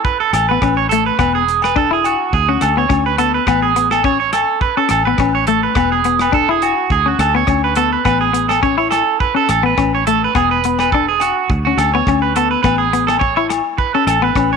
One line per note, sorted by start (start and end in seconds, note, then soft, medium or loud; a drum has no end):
0.05 0.19 B4 medium
0.05 kick medium
0.20 0.32 A4 medium
0.33 0.57 A1 medium
0.33 0.48 A4 medium
0.33 cross-stick medium
0.33 closed hi-hat medium
0.33 low agogo medium
0.49 0.61 B3 medium
0.49 0.76 B4 medium
0.62 1.10 A1 medium
0.62 0.87 C#4 medium
0.62 kick medium
0.62 cross-stick medium
0.62 low agogo medium
0.77 0.89 C#5 medium
0.89 1.16 A3 medium
0.89 1.05 A4 medium
0.89 closed hi-hat medium
1.06 1.18 B4 medium
1.19 2.15 E1 medium
1.19 1.43 B3 medium
1.19 1.34 B4 medium
1.19 kick medium
1.19 cross-stick medium
1.19 low agogo medium
1.35 1.62 G#4 medium
1.49 closed hi-hat soft
1.62 1.76 B4 medium
1.62 cross-stick medium
1.62 low agogo medium
1.76 1.89 D4 medium
1.76 1.91 A4 medium
1.76 kick medium
1.91 2.15 E4 medium
1.91 2.05 G#4 medium
2.04 2.32 F#4 medium
2.04 closed hi-hat soft
2.04 low agogo medium
2.33 2.57 D2 medium
2.33 2.48 G#4 medium
2.33 kick medium
2.48 2.73 C#4 medium
2.48 2.61 F#4 medium
2.61 2.86 D2 medium
2.61 2.77 A4 medium
2.61 cross-stick medium
2.61 closed hi-hat soft
2.61 low agogo medium
2.77 2.88 B3 medium
2.77 3.05 C#5 medium
2.89 3.38 D2 medium
2.89 3.14 C#4 medium
2.89 kick medium
2.89 cross-stick medium
2.89 low agogo medium
3.06 3.18 B4 medium
3.18 3.43 B3 medium
3.18 3.34 A4 medium
3.18 closed hi-hat soft
3.34 3.46 B4 medium
3.47 4.44 A1 medium
3.47 3.72 B3 medium
3.47 3.62 B4 medium
3.47 kick medium
3.47 cross-stick medium
3.47 low agogo medium
3.62 3.90 G#4 medium
3.76 4.00 B3 medium
3.76 closed hi-hat soft
3.91 4.04 A4 medium
3.91 cross-stick medium
3.91 low agogo medium
4.04 4.18 C#4 medium
4.04 4.19 C#5 medium
4.04 kick medium
4.20 4.32 C#5 medium
4.33 4.60 A4 medium
4.33 cross-stick medium
4.33 closed hi-hat soft
4.33 low agogo medium
4.61 4.77 B4 medium
4.61 kick medium
4.77 5.02 C#4 medium
4.77 4.89 A4 medium
4.89 5.15 A1 medium
4.89 5.05 A4 medium
4.89 cross-stick medium
4.89 closed hi-hat soft
4.89 low agogo medium
5.05 5.18 B3 medium
5.05 5.33 B4 medium
5.18 5.67 A1 medium
5.18 5.44 C#4 medium
5.18 kick medium
5.18 cross-stick medium
5.18 low agogo medium
5.35 5.47 C#5 medium
5.47 5.72 A3 medium
5.47 5.63 A4 medium
5.47 closed hi-hat medium
5.63 5.75 B4 medium
5.75 6.72 E1 medium
5.75 6.01 B3 medium
5.75 5.91 B4 medium
5.75 kick medium
5.75 cross-stick medium
5.75 low agogo medium
5.92 6.19 G#4 medium
6.04 6.29 B3 medium
6.04 closed hi-hat soft
6.19 6.33 B4 medium
6.19 cross-stick medium
6.19 low agogo medium
6.32 6.46 D4 medium
6.32 6.49 A4 medium
6.32 kick medium
6.49 6.73 E4 medium
6.49 6.62 G#4 medium
6.62 6.90 F#4 medium
6.62 closed hi-hat soft
6.62 low agogo medium
6.90 7.14 D2 medium
6.90 7.06 G#4 medium
6.90 kick medium
7.06 7.30 C#4 medium
7.06 7.20 F#4 medium
7.19 7.43 D2 medium
7.19 7.35 A4 medium
7.19 cross-stick medium
7.19 closed hi-hat soft
7.19 low agogo medium
7.35 7.46 B3 medium
7.35 7.63 C#5 medium
7.47 7.96 D2 medium
7.47 7.72 C#4 medium
7.47 kick medium
7.47 cross-stick medium
7.47 low agogo soft
7.64 7.76 B4 medium
7.75 8.01 B3 medium
7.75 7.92 A4 medium
7.75 closed hi-hat soft
7.93 8.04 B4 medium
8.05 9.02 A1 medium
8.05 8.30 B3 medium
8.05 8.20 B4 medium
8.05 kick medium
8.05 cross-stick medium
8.05 low agogo medium
8.21 8.48 G#4 medium
8.33 8.58 B3 medium
8.33 closed hi-hat soft
8.49 8.62 A4 medium
8.49 cross-stick medium
8.49 low agogo medium
8.63 8.76 C#4 medium
8.63 8.77 C#5 medium
8.63 kick medium
8.78 9.02 E4 medium
8.78 8.90 C#5 medium
8.91 9.18 A4 medium
8.91 cross-stick medium
8.91 closed hi-hat soft
8.91 low agogo medium
9.20 9.35 B4 medium
9.20 kick medium
9.35 9.59 C#4 medium
9.35 9.48 A4 medium
9.49 9.73 A1 medium
9.49 9.64 A4 medium
9.49 cross-stick medium
9.49 closed hi-hat soft
9.49 low agogo medium
9.63 9.75 B3 medium
9.63 9.92 B4 medium
9.77 10.26 A1 medium
9.77 10.02 C#4 medium
9.77 kick medium
9.77 cross-stick medium
9.77 low agogo medium
9.95 10.06 C#5 medium
10.07 10.31 A3 medium
10.07 10.21 A4 medium
10.07 closed hi-hat medium
10.24 10.35 B4 medium
10.35 11.31 E1 medium
10.35 10.59 B3 medium
10.35 10.50 G#4 medium
10.35 kick medium
10.35 cross-stick medium
10.35 low agogo medium
10.51 10.78 B4 medium
10.64 10.89 B3 medium
10.64 closed hi-hat soft
10.79 10.92 B4 medium
10.79 cross-stick medium
10.79 low agogo medium
10.92 11.07 D4 medium
10.92 11.07 A4 medium
10.92 kick medium
11.08 11.20 G#4 medium
11.20 11.48 F#4 medium
11.20 closed hi-hat soft
11.20 low agogo medium
11.50 11.74 D2 medium
11.50 muted clean electric guitar stroke medium
11.50 kick medium
11.65 11.90 C#4 medium
11.65 11.77 F#4 medium
11.77 12.02 D2 medium
11.77 11.93 A4 medium
11.77 cross-stick medium
11.77 closed hi-hat soft
11.77 low agogo medium
11.94 12.05 B3 medium
11.94 12.21 C#5 medium
12.07 12.55 D2 medium
12.07 12.32 C#4 medium
12.07 kick medium
12.07 cross-stick medium
12.07 low agogo medium
12.22 12.34 B4 medium
12.36 12.60 B3 medium
12.36 12.50 A4 medium
12.36 closed hi-hat soft
12.51 12.61 B4 medium
12.63 13.60 A1 medium
12.63 12.88 B3 medium
12.63 12.78 B4 medium
12.63 kick medium
12.63 cross-stick medium
12.63 low agogo medium
12.78 13.06 G#4 medium
12.93 13.17 B3 medium
12.93 closed hi-hat soft
13.07 13.19 A4 medium
13.07 cross-stick medium
13.07 low agogo medium
13.19 13.35 C#5 medium
13.19 muted clean electric guitar stroke medium
13.19 kick medium
13.36 13.61 E4 medium
13.36 13.49 C#5 medium
13.49 muted clean electric guitar stroke medium
13.49 cross-stick medium
13.49 closed hi-hat soft
13.49 low agogo medium
13.78 13.93 B4 medium
13.78 kick medium
13.94 14.19 C#4 medium
13.94 14.06 A4 medium
14.07 14.31 A1 medium
14.07 14.22 A4 medium
14.07 cross-stick medium
14.07 closed hi-hat soft
14.07 low agogo medium
14.22 14.33 B3 medium
14.22 14.50 B4 medium
14.35 14.57 A1 medium
14.35 14.57 C#4 medium
14.35 kick medium
14.35 cross-stick medium
14.35 low agogo medium
14.53 14.57 C#5 medium